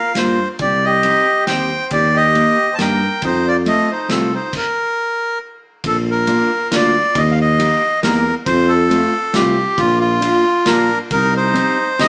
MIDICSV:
0, 0, Header, 1, 6, 480
1, 0, Start_track
1, 0, Key_signature, -2, "major"
1, 0, Tempo, 438917
1, 650, Time_signature, 3, 2, 24, 8
1, 13211, End_track
2, 0, Start_track
2, 0, Title_t, "Accordion"
2, 0, Program_c, 0, 21
2, 0, Note_on_c, 0, 77, 102
2, 191, Note_on_c, 0, 72, 93
2, 198, Note_off_c, 0, 77, 0
2, 527, Note_off_c, 0, 72, 0
2, 671, Note_on_c, 0, 74, 102
2, 928, Note_on_c, 0, 75, 106
2, 932, Note_off_c, 0, 74, 0
2, 1576, Note_off_c, 0, 75, 0
2, 1611, Note_on_c, 0, 79, 105
2, 2057, Note_off_c, 0, 79, 0
2, 2108, Note_on_c, 0, 74, 104
2, 2368, Note_off_c, 0, 74, 0
2, 2369, Note_on_c, 0, 75, 107
2, 3005, Note_on_c, 0, 81, 73
2, 3006, Note_off_c, 0, 75, 0
2, 3061, Note_off_c, 0, 81, 0
2, 3070, Note_on_c, 0, 79, 98
2, 3549, Note_off_c, 0, 79, 0
2, 3561, Note_on_c, 0, 72, 98
2, 3805, Note_on_c, 0, 74, 100
2, 3809, Note_off_c, 0, 72, 0
2, 3897, Note_off_c, 0, 74, 0
2, 4024, Note_on_c, 0, 75, 97
2, 4278, Note_off_c, 0, 75, 0
2, 4281, Note_on_c, 0, 72, 72
2, 4487, Note_on_c, 0, 69, 77
2, 4492, Note_off_c, 0, 72, 0
2, 4748, Note_off_c, 0, 69, 0
2, 4758, Note_on_c, 0, 72, 77
2, 4969, Note_off_c, 0, 72, 0
2, 4997, Note_on_c, 0, 70, 98
2, 5889, Note_off_c, 0, 70, 0
2, 6420, Note_on_c, 0, 69, 98
2, 6532, Note_off_c, 0, 69, 0
2, 6682, Note_on_c, 0, 70, 97
2, 7385, Note_off_c, 0, 70, 0
2, 7388, Note_on_c, 0, 74, 101
2, 7845, Note_on_c, 0, 75, 104
2, 7862, Note_off_c, 0, 74, 0
2, 7997, Note_on_c, 0, 77, 75
2, 8021, Note_off_c, 0, 75, 0
2, 8086, Note_off_c, 0, 77, 0
2, 8104, Note_on_c, 0, 75, 103
2, 8748, Note_off_c, 0, 75, 0
2, 8787, Note_on_c, 0, 70, 102
2, 9129, Note_off_c, 0, 70, 0
2, 9258, Note_on_c, 0, 72, 110
2, 9499, Note_on_c, 0, 69, 94
2, 9529, Note_off_c, 0, 72, 0
2, 10221, Note_on_c, 0, 67, 89
2, 10229, Note_off_c, 0, 69, 0
2, 10689, Note_on_c, 0, 65, 113
2, 10716, Note_off_c, 0, 67, 0
2, 10922, Note_off_c, 0, 65, 0
2, 10939, Note_on_c, 0, 65, 107
2, 11663, Note_on_c, 0, 70, 100
2, 11677, Note_off_c, 0, 65, 0
2, 12015, Note_off_c, 0, 70, 0
2, 12162, Note_on_c, 0, 70, 112
2, 12405, Note_off_c, 0, 70, 0
2, 12432, Note_on_c, 0, 72, 103
2, 13126, Note_on_c, 0, 75, 120
2, 13150, Note_off_c, 0, 72, 0
2, 13211, Note_off_c, 0, 75, 0
2, 13211, End_track
3, 0, Start_track
3, 0, Title_t, "Trumpet"
3, 0, Program_c, 1, 56
3, 0, Note_on_c, 1, 70, 95
3, 133, Note_off_c, 1, 70, 0
3, 165, Note_on_c, 1, 65, 67
3, 513, Note_off_c, 1, 65, 0
3, 667, Note_on_c, 1, 67, 78
3, 904, Note_off_c, 1, 67, 0
3, 935, Note_on_c, 1, 67, 92
3, 1580, Note_off_c, 1, 67, 0
3, 1614, Note_on_c, 1, 72, 74
3, 2059, Note_off_c, 1, 72, 0
3, 2097, Note_on_c, 1, 67, 86
3, 2337, Note_off_c, 1, 67, 0
3, 2360, Note_on_c, 1, 67, 88
3, 2939, Note_off_c, 1, 67, 0
3, 2976, Note_on_c, 1, 72, 60
3, 3041, Note_off_c, 1, 72, 0
3, 3049, Note_on_c, 1, 70, 81
3, 3491, Note_off_c, 1, 70, 0
3, 3535, Note_on_c, 1, 63, 89
3, 3771, Note_off_c, 1, 63, 0
3, 3805, Note_on_c, 1, 65, 72
3, 3897, Note_off_c, 1, 65, 0
3, 4025, Note_on_c, 1, 69, 75
3, 4254, Note_off_c, 1, 69, 0
3, 4289, Note_on_c, 1, 63, 82
3, 4476, Note_off_c, 1, 63, 0
3, 4502, Note_on_c, 1, 60, 68
3, 4731, Note_off_c, 1, 60, 0
3, 4749, Note_on_c, 1, 63, 67
3, 4944, Note_off_c, 1, 63, 0
3, 11667, Note_on_c, 1, 62, 74
3, 12017, Note_off_c, 1, 62, 0
3, 12159, Note_on_c, 1, 63, 87
3, 12403, Note_off_c, 1, 63, 0
3, 12415, Note_on_c, 1, 63, 97
3, 13076, Note_off_c, 1, 63, 0
3, 13132, Note_on_c, 1, 67, 75
3, 13211, Note_off_c, 1, 67, 0
3, 13211, End_track
4, 0, Start_track
4, 0, Title_t, "Steel-string acoustic guitar"
4, 0, Program_c, 2, 25
4, 175, Note_on_c, 2, 58, 55
4, 184, Note_on_c, 2, 62, 45
4, 184, Note_on_c, 2, 65, 63
4, 408, Note_off_c, 2, 58, 0
4, 412, Note_off_c, 2, 65, 0
4, 413, Note_off_c, 2, 62, 0
4, 1133, Note_on_c, 2, 60, 54
4, 1140, Note_on_c, 2, 63, 51
4, 1146, Note_on_c, 2, 67, 55
4, 1369, Note_off_c, 2, 60, 0
4, 1371, Note_off_c, 2, 63, 0
4, 1376, Note_off_c, 2, 67, 0
4, 1613, Note_on_c, 2, 60, 66
4, 1620, Note_on_c, 2, 63, 51
4, 1621, Note_on_c, 2, 67, 63
4, 1848, Note_off_c, 2, 60, 0
4, 1851, Note_off_c, 2, 63, 0
4, 1852, Note_off_c, 2, 67, 0
4, 2573, Note_on_c, 2, 58, 59
4, 2574, Note_on_c, 2, 63, 50
4, 2582, Note_on_c, 2, 67, 60
4, 2806, Note_off_c, 2, 58, 0
4, 2806, Note_off_c, 2, 63, 0
4, 2810, Note_off_c, 2, 67, 0
4, 3043, Note_on_c, 2, 58, 63
4, 3050, Note_on_c, 2, 63, 53
4, 3054, Note_on_c, 2, 67, 60
4, 3280, Note_off_c, 2, 58, 0
4, 3284, Note_off_c, 2, 63, 0
4, 3284, Note_off_c, 2, 67, 0
4, 3998, Note_on_c, 2, 57, 67
4, 4004, Note_on_c, 2, 60, 59
4, 4011, Note_on_c, 2, 65, 63
4, 4232, Note_off_c, 2, 57, 0
4, 4235, Note_off_c, 2, 60, 0
4, 4238, Note_off_c, 2, 65, 0
4, 4465, Note_on_c, 2, 57, 58
4, 4474, Note_on_c, 2, 60, 63
4, 4478, Note_on_c, 2, 65, 67
4, 4704, Note_off_c, 2, 57, 0
4, 4708, Note_off_c, 2, 60, 0
4, 4709, Note_off_c, 2, 65, 0
4, 6858, Note_on_c, 2, 58, 69
4, 6868, Note_on_c, 2, 62, 59
4, 6870, Note_on_c, 2, 65, 59
4, 7100, Note_off_c, 2, 58, 0
4, 7104, Note_off_c, 2, 65, 0
4, 7106, Note_off_c, 2, 62, 0
4, 7347, Note_on_c, 2, 58, 57
4, 7348, Note_on_c, 2, 62, 63
4, 7356, Note_on_c, 2, 65, 70
4, 7584, Note_off_c, 2, 58, 0
4, 7584, Note_off_c, 2, 62, 0
4, 7588, Note_off_c, 2, 65, 0
4, 8296, Note_on_c, 2, 58, 62
4, 8302, Note_on_c, 2, 63, 58
4, 8302, Note_on_c, 2, 67, 75
4, 8536, Note_off_c, 2, 58, 0
4, 8538, Note_off_c, 2, 63, 0
4, 8539, Note_off_c, 2, 67, 0
4, 8783, Note_on_c, 2, 58, 65
4, 8789, Note_on_c, 2, 63, 66
4, 8794, Note_on_c, 2, 67, 71
4, 9018, Note_off_c, 2, 58, 0
4, 9021, Note_off_c, 2, 63, 0
4, 9024, Note_off_c, 2, 67, 0
4, 9728, Note_on_c, 2, 57, 61
4, 9738, Note_on_c, 2, 60, 62
4, 9742, Note_on_c, 2, 65, 70
4, 9969, Note_off_c, 2, 57, 0
4, 9974, Note_off_c, 2, 60, 0
4, 9976, Note_off_c, 2, 65, 0
4, 10206, Note_on_c, 2, 57, 70
4, 10215, Note_on_c, 2, 60, 57
4, 10221, Note_on_c, 2, 65, 78
4, 10449, Note_off_c, 2, 57, 0
4, 10454, Note_off_c, 2, 60, 0
4, 10456, Note_off_c, 2, 65, 0
4, 11155, Note_on_c, 2, 58, 61
4, 11161, Note_on_c, 2, 62, 64
4, 11170, Note_on_c, 2, 65, 66
4, 11406, Note_off_c, 2, 58, 0
4, 11410, Note_off_c, 2, 62, 0
4, 11412, Note_off_c, 2, 65, 0
4, 11658, Note_on_c, 2, 58, 63
4, 11664, Note_on_c, 2, 65, 64
4, 11665, Note_on_c, 2, 62, 58
4, 11901, Note_off_c, 2, 58, 0
4, 11904, Note_off_c, 2, 65, 0
4, 11905, Note_off_c, 2, 62, 0
4, 12617, Note_on_c, 2, 60, 71
4, 12622, Note_on_c, 2, 67, 63
4, 12623, Note_on_c, 2, 63, 59
4, 12866, Note_off_c, 2, 60, 0
4, 12866, Note_off_c, 2, 67, 0
4, 12867, Note_off_c, 2, 63, 0
4, 13113, Note_on_c, 2, 60, 68
4, 13114, Note_on_c, 2, 63, 61
4, 13117, Note_on_c, 2, 67, 76
4, 13211, Note_off_c, 2, 60, 0
4, 13211, Note_off_c, 2, 63, 0
4, 13211, Note_off_c, 2, 67, 0
4, 13211, End_track
5, 0, Start_track
5, 0, Title_t, "Tuba"
5, 0, Program_c, 3, 58
5, 177, Note_on_c, 3, 43, 71
5, 488, Note_off_c, 3, 43, 0
5, 653, Note_on_c, 3, 36, 91
5, 1278, Note_off_c, 3, 36, 0
5, 1614, Note_on_c, 3, 39, 74
5, 1924, Note_off_c, 3, 39, 0
5, 2097, Note_on_c, 3, 39, 103
5, 2717, Note_off_c, 3, 39, 0
5, 3053, Note_on_c, 3, 43, 88
5, 3361, Note_off_c, 3, 43, 0
5, 3529, Note_on_c, 3, 41, 105
5, 4145, Note_off_c, 3, 41, 0
5, 4493, Note_on_c, 3, 36, 77
5, 4797, Note_off_c, 3, 36, 0
5, 6390, Note_on_c, 3, 34, 101
5, 7014, Note_off_c, 3, 34, 0
5, 7342, Note_on_c, 3, 38, 87
5, 7656, Note_off_c, 3, 38, 0
5, 7822, Note_on_c, 3, 39, 115
5, 8445, Note_off_c, 3, 39, 0
5, 8777, Note_on_c, 3, 40, 84
5, 9090, Note_off_c, 3, 40, 0
5, 9260, Note_on_c, 3, 41, 118
5, 9883, Note_off_c, 3, 41, 0
5, 10216, Note_on_c, 3, 36, 92
5, 10530, Note_off_c, 3, 36, 0
5, 10698, Note_on_c, 3, 34, 112
5, 11328, Note_off_c, 3, 34, 0
5, 11654, Note_on_c, 3, 34, 83
5, 11975, Note_off_c, 3, 34, 0
5, 12144, Note_on_c, 3, 36, 100
5, 12777, Note_off_c, 3, 36, 0
5, 13119, Note_on_c, 3, 38, 96
5, 13211, Note_off_c, 3, 38, 0
5, 13211, End_track
6, 0, Start_track
6, 0, Title_t, "Drums"
6, 164, Note_on_c, 9, 38, 58
6, 164, Note_on_c, 9, 51, 48
6, 274, Note_off_c, 9, 38, 0
6, 274, Note_off_c, 9, 51, 0
6, 643, Note_on_c, 9, 51, 36
6, 649, Note_on_c, 9, 36, 71
6, 753, Note_off_c, 9, 51, 0
6, 759, Note_off_c, 9, 36, 0
6, 1127, Note_on_c, 9, 51, 42
6, 1236, Note_off_c, 9, 51, 0
6, 1607, Note_on_c, 9, 38, 60
6, 1607, Note_on_c, 9, 51, 45
6, 1717, Note_off_c, 9, 38, 0
6, 1717, Note_off_c, 9, 51, 0
6, 2084, Note_on_c, 9, 51, 46
6, 2091, Note_on_c, 9, 36, 73
6, 2193, Note_off_c, 9, 51, 0
6, 2200, Note_off_c, 9, 36, 0
6, 2571, Note_on_c, 9, 51, 38
6, 2681, Note_off_c, 9, 51, 0
6, 3047, Note_on_c, 9, 38, 62
6, 3047, Note_on_c, 9, 51, 46
6, 3157, Note_off_c, 9, 38, 0
6, 3157, Note_off_c, 9, 51, 0
6, 3519, Note_on_c, 9, 51, 47
6, 3526, Note_on_c, 9, 36, 78
6, 3628, Note_off_c, 9, 51, 0
6, 3635, Note_off_c, 9, 36, 0
6, 4003, Note_on_c, 9, 51, 41
6, 4113, Note_off_c, 9, 51, 0
6, 4477, Note_on_c, 9, 38, 61
6, 4477, Note_on_c, 9, 51, 42
6, 4587, Note_off_c, 9, 38, 0
6, 4587, Note_off_c, 9, 51, 0
6, 4955, Note_on_c, 9, 36, 70
6, 4956, Note_on_c, 9, 49, 70
6, 5064, Note_off_c, 9, 36, 0
6, 5065, Note_off_c, 9, 49, 0
6, 6385, Note_on_c, 9, 51, 51
6, 6386, Note_on_c, 9, 36, 76
6, 6494, Note_off_c, 9, 51, 0
6, 6495, Note_off_c, 9, 36, 0
6, 6858, Note_on_c, 9, 51, 44
6, 6967, Note_off_c, 9, 51, 0
6, 7344, Note_on_c, 9, 38, 71
6, 7344, Note_on_c, 9, 51, 57
6, 7454, Note_off_c, 9, 38, 0
6, 7454, Note_off_c, 9, 51, 0
6, 7823, Note_on_c, 9, 36, 94
6, 7824, Note_on_c, 9, 51, 51
6, 7932, Note_off_c, 9, 36, 0
6, 7933, Note_off_c, 9, 51, 0
6, 8307, Note_on_c, 9, 51, 51
6, 8416, Note_off_c, 9, 51, 0
6, 8782, Note_on_c, 9, 38, 64
6, 8782, Note_on_c, 9, 51, 43
6, 8891, Note_off_c, 9, 38, 0
6, 8891, Note_off_c, 9, 51, 0
6, 9256, Note_on_c, 9, 36, 83
6, 9257, Note_on_c, 9, 51, 51
6, 9365, Note_off_c, 9, 36, 0
6, 9366, Note_off_c, 9, 51, 0
6, 9743, Note_on_c, 9, 51, 45
6, 9852, Note_off_c, 9, 51, 0
6, 10211, Note_on_c, 9, 38, 69
6, 10211, Note_on_c, 9, 51, 49
6, 10321, Note_off_c, 9, 38, 0
6, 10321, Note_off_c, 9, 51, 0
6, 10694, Note_on_c, 9, 36, 93
6, 10697, Note_on_c, 9, 51, 50
6, 10804, Note_off_c, 9, 36, 0
6, 10806, Note_off_c, 9, 51, 0
6, 11177, Note_on_c, 9, 51, 54
6, 11286, Note_off_c, 9, 51, 0
6, 11654, Note_on_c, 9, 38, 70
6, 11654, Note_on_c, 9, 51, 51
6, 11764, Note_off_c, 9, 38, 0
6, 11764, Note_off_c, 9, 51, 0
6, 12146, Note_on_c, 9, 51, 50
6, 12148, Note_on_c, 9, 36, 87
6, 12255, Note_off_c, 9, 51, 0
6, 12258, Note_off_c, 9, 36, 0
6, 12636, Note_on_c, 9, 51, 43
6, 12745, Note_off_c, 9, 51, 0
6, 13115, Note_on_c, 9, 38, 63
6, 13115, Note_on_c, 9, 51, 46
6, 13211, Note_off_c, 9, 38, 0
6, 13211, Note_off_c, 9, 51, 0
6, 13211, End_track
0, 0, End_of_file